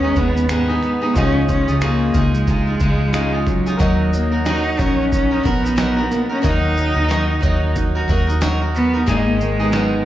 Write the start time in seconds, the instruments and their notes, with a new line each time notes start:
Already playing: fingered electric bass D#2, nylon-string guitar D#3 D#4, grand piano B3 G#4 D#5, cello C#4
0.03 steel-string acoustic guitar G#3 B3 D#4 G#4
0.16 fingered electric bass D#2, steel-string acoustic guitar G#3 B3 D#4 G#4, cello B3, kick, shaker
0.37 shaker
0.49 steel-string acoustic guitar G#2 D#3 G#3 B3 D#4 G#4, cello B3, finger snap, shaker
0.68 steel-string acoustic guitar G#3 B3 D#4 G#4
0.82 nylon-string guitar B3, finger snap, shaker
1.02 steel-string acoustic guitar G#3 B3 D#4 G#4
1.14 fingered electric bass C#2, steel-string acoustic guitar C#3 G#3 D#4 F4 G#4, nylon-string guitar F3, grand piano C#4 F4 D#5, cello C#4, kick, shaker
1.49 nylon-string guitar F3, cello C#4, kick, shaker
1.68 fingered electric bass C#2, steel-string acoustic guitar D#4 F4 G#4, shaker
1.81 steel-string acoustic guitar C#3 G#3 D#4 F4 G#4, cello A#3, finger snap, shaker
2.14 fingered electric bass C#2, nylon-string guitar F3, steel-string acoustic guitar G#3 D#4 F4 G#4, kick, shaker
2.35 cello G#3, shaker
2.47 steel-string acoustic guitar G#3 D#4 F4 G#4, kick, shaker
2.67 steel-string acoustic guitar D#4 F4 G#4
2.80 fingered electric bass C#2, steel-string acoustic guitar G#3 D#4 F4 G#4, kick, shaker
3.12 steel-string acoustic guitar C#3 G#3 D#4 F4 G#4, grand piano C#4 F4 D#5, finger snap, shaker
3.32 steel-string acoustic guitar D#4 F4 G#4
3.47 cello F#3, nylon-string guitar G#3, finger snap, kick, shaker
3.66 steel-string acoustic guitar D#4 F4 G#4, shaker
3.77 fingered electric bass D#2, steel-string acoustic guitar D#3 F#3 D#4 F#4 A#4, grand piano F#4 A#4, kick, shaker
3.81 grand piano D#5
4.13 nylon-string guitar F#3, cello A#3, shaker
4.31 steel-string acoustic guitar D#4 F#4 A#4
4.45 steel-string acoustic guitar D#3 F#3 D#4 F#4 A#4, cello D#4, snare, shaker
4.77 fingered electric bass A#1, steel-string acoustic guitar F#3 D#4 F#4 A#4, cello C#4, kick, shaker
5.12 cello C#4, nylon-string guitar D#4, kick, shaker
5.31 steel-string acoustic guitar D#4 F#4 A#4
5.43 fingered electric bass A#1, steel-string acoustic guitar F#3 D#4 F#4 A#4, cello B3, kick, shaker
5.63 steel-string acoustic guitar D#4 F#4 A#4, shaker
5.76 steel-string acoustic guitar D#3 F#3 D#4 F#4 A#4, snare, shaker
5.97 steel-string acoustic guitar D#4 F#4 A#4
6.11 nylon-string guitar A#3, snare, shaker
6.29 cello C#4, steel-string acoustic guitar D#4 F#4 A#4
6.42 fingered electric bass D#2, steel-string acoustic guitar D#3 F#3 D#4 F#4 A#4, cello D#4, grand piano F#4 A#4, kick, shaker
6.46 grand piano D#5
6.77 nylon-string guitar F#3, shaker
6.95 fingered electric bass D#2, steel-string acoustic guitar D#4 F#4 A#4
7.08 steel-string acoustic guitar D#3 F#3 D#4 F#4 A#4, snare, shaker
7.41 fingered electric bass D#2, steel-string acoustic guitar F#3 D#4 F#4 A#4, kick, shaker
7.76 nylon-string guitar D#4, kick, shaker
7.95 steel-string acoustic guitar D#4 F#4 A#4
8.08 fingered electric bass D#2, steel-string acoustic guitar F#3 D#4 F#4 A#4, nylon-string guitar A#3, kick, shaker
8.27 steel-string acoustic guitar D#4 F#4 A#4, shaker
8.41 steel-string acoustic guitar D#3 F#3 D#4 F#4 A#4, snare, shaker
8.61 steel-string acoustic guitar D#4 F#4 A#4
8.75 cello B3, snare, shaker
8.94 steel-string acoustic guitar D#4 F#4 A#4
9.06 fingered electric bass G#1, steel-string acoustic guitar G#2 D#3 G#3 D#4 G#4, grand piano G#3 G#4, cello A#3, kick, shaker
9.11 grand piano D5
9.17 grand piano D#5
9.40 nylon-string guitar D#3, cello G#3, shaker
9.60 steel-string acoustic guitar G#3 B3 D#4 G#4
9.72 steel-string acoustic guitar G#2 D#3 G#3 B3 D#4 G#4, snare, shaker